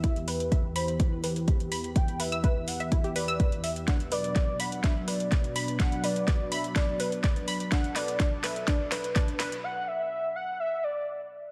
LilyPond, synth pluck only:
\new Staff \with { instrumentName = "Synth pluck" } { \time 4/4 \key b \phrygian \tempo 4 = 125 e'16 r16 b'16 r16 e''16 r16 b''16 r8. b'16 r8. b''16 r16 | r8 b'16 e'''16 b'16 r8 e''16 e'16 g'16 b'16 e'''16 b'16 r16 e''16 r16 | d'16 r16 b'16 r16 d''16 r16 b''16 r16 d'16 r16 b'16 r16 d''16 r16 b''16 r16 | d'16 r16 b'16 r16 d''16 r16 b''16 r16 d'16 r16 b'16 r16 d''16 r16 b''16 r16 |
d'16 r16 b'16 r16 d'16 r16 b'16 r16 d'16 r16 b'16 r16 d'16 r16 b'16 r16 | r1 | }